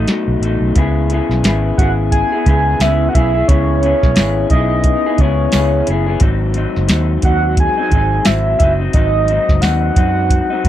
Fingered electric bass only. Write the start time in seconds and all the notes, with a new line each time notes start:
0.28 B1
0.40 A1
0.61 B1
0.75 C#2
1.29 B1
1.43 G#1
1.78 G#1
2.46 C#2
2.80 C#2
3.15 B1
3.49 C#2
4.03 B1
4.17 G#1
4.50 B1
5.19 C#2
5.54 C#2
5.88 F#1
6.21 G#1
6.77 F#1
6.90 D#2
7.23 D#2
7.91 G#1
8.27 G#1
8.60 F#1
8.94 G#1
9.49 F#1
9.62 D#2
9.97 F#2
10.65 G#1